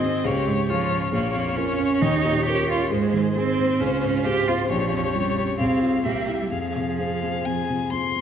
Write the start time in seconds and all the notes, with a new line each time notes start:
Already playing: G#2 D#3 C4 F#4 G#4 D#5
0.03 C4
0.25 C#2 A#3 G4 C#5
0.47 G#2 G#3
0.69 F3 C#4 F4 G#4 C#5
0.91 C#4
1.12 A#1 A#3 F4 C#5
1.35 F2
1.57 C#4 F4 A#4
1.79 C#4
2.02 D#2 D#4 G4
2.25 A#2
2.46 C#4 G4 A#4
2.69 C#4 F4
2.91 G#2 G#3 G#4 C5
3.14 D#3
3.36 C4 D#4 G#4
3.59 C4
3.80 C#2 C#4 F4
4.03 G#2
4.25 C4 F4 G4 G#4
4.48 C4 F4
4.70 A#1 F3 G4 C#5
4.93 F2
5.15 G3 C#4 F4 G4
5.38 C#4
5.59 C2 C4 G#4 F5
5.82 F4 G#4
6.04 C2 A#3 G4 E5
6.28 E4 G4
6.41 G3
6.51 F2 F3 G#4 F5
6.76 C3
6.99 C4 F4 G#4 F5
7.23 C4
7.45 F2 G#5
7.69 C3
7.92 C4 F4 G#4 C6
8.16 C4